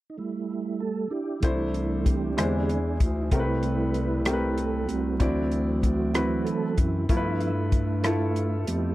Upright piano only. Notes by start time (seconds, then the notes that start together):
1.43 C3 A3 D4 E4 C5
2.37 E3 G#3 D4 E4 C5
3.32 C3 A3 C4 G4 A#4
3.40 B4
4.26 A3 C4 G4 A#4
4.34 B4
5.20 D3 C4 E4 F#4 D5
6.14 C4 E4 F#4 B4
7.09 G2 A3 E4 F4 A4
7.17 B4
8.03 A3 E4 F4 A4